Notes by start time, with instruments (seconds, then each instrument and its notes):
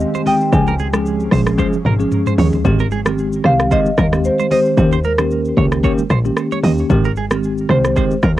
Already playing: tine electric piano D#3 G#3 C4 G4, ambient pad D#3 G#3 C4 G4, marimba D#5
0.00 shaker
0.14 clean electric guitar C5, high conga, shaker
0.26 tine electric piano D#3 G#3 C4 G4, clean electric guitar D#5, marimba G5, open hi-hat, low conga, shaker
0.41 shaker
0.52 log drum bass C#2, tine electric piano F3 G#3 C#4 G#4, ambient pad F3 C#4 G#4, marimba G#5, kick, low conga, shaker
0.67 clean electric guitar A#4, shaker
0.79 clean electric guitar G#4, high conga, shaker
0.93 tine electric piano F3 G#3 C#4 G#4, cross-stick, high conga, shaker
1.06 shaker
1.20 shaker
1.31 log drum bass A#1, tine electric piano F3 G#3 C#4 G#4, clean electric guitar C5, kick, cross-stick, open hi-hat, high conga
1.47 cross-stick, shaker
1.58 tine electric piano F3 G#3 C#4 G#4, clean electric guitar C5, kick, high tom, low conga, shaker
1.73 high conga, shaker
1.85 log drum bass G#1, clean electric guitar A#4, mid tom, high conga
1.99 tine electric piano F3 G#3 C#4 G#4, high conga, shaker
2.12 mid tom, shaker
2.26 clean electric guitar C5, mid tom, high conga, shaker
2.38 log drum bass D#2, tine electric piano F3 G#3 C#4 G#4, clean electric guitar C#5, floor tom, open hi-hat, low conga
2.53 floor tom, shaker
2.65 log drum bass G#1, tine electric piano D#3 G#3 C4 G4, kick, low conga, shaker
2.79 clean electric guitar A#4, shaker
2.91 clean electric guitar G#4, high conga, shaker
3.06 tine electric piano D#3 G#3 C4 G4, cross-stick, high conga, shaker
3.18 shaker
3.33 shaker
3.44 log drum bass C2, tine electric piano D#3 G#3 C4 G4, clean electric guitar C5, marimba F5, cross-stick, high conga
3.60 cross-stick, shaker
3.71 tine electric piano D#3 G#3 C4 G4, clean electric guitar C5, marimba D#5, kick, shaker
3.86 high conga, shaker
3.98 log drum bass D#2, clean electric guitar A#4, kick, cross-stick, high conga, shaker
4.12 tine electric piano D#3 G#3 C4 G4, cross-stick, high conga, shaker
4.25 marimba C5, shaker
4.39 clean electric guitar C5, high conga, shaker
4.51 tine electric piano D#3 G#3 C4 G4, marimba C5, clean electric guitar D#5, open hi-hat, low conga, shaker
4.65 shaker
4.77 log drum bass D#2, tine electric piano D#3 A#3 C#4 G4, kick, low conga, shaker
4.92 clean electric guitar C5, shaker
5.04 clean electric guitar A#4, marimba A#4, high conga, shaker
5.18 tine electric piano D#3 A#3 C#4 G4, cross-stick, high conga, shaker
5.31 shaker
5.45 shaker
5.57 log drum bass C#2, tine electric piano D#3 A#3 C#4 G4, clean electric guitar C#5, kick, high conga
5.72 cross-stick, shaker
5.83 tine electric piano D#3 A#3 C#4 G4, clean electric guitar C#5, kick, shaker
5.98 high conga, shaker
6.10 log drum bass A#1, clean electric guitar C5, cross-stick, high conga, shaker
6.25 tine electric piano D#3 A#3 C#4 G4, high conga, shaker
6.37 cross-stick, shaker
6.52 clean electric guitar C#5, high conga, shaker
6.63 log drum bass D#2, tine electric piano D#3 A#3 C#4 G4, clean electric guitar D#5, open hi-hat, low conga, shaker
6.78 shaker
6.90 log drum bass G#1, tine electric piano D#3 G#3 C4 G4, kick, low conga, shaker
7.05 clean electric guitar A#4, shaker
7.16 clean electric guitar G#4, high conga, shaker
7.31 tine electric piano D#3 G#3 C4 G4, cross-stick, high conga, shaker
7.44 shaker
7.58 shaker
7.69 log drum bass C2, tine electric piano D#3 G#3 C4 G4, clean electric guitar C5, marimba C5, cross-stick, high conga
7.84 cross-stick, shaker
7.96 tine electric piano D#3 G#3 C4 G4, clean electric guitar C5, kick, shaker
8.11 high conga, shaker
8.23 log drum bass D#2, clean electric guitar A#4, kick, cross-stick, high conga, shaker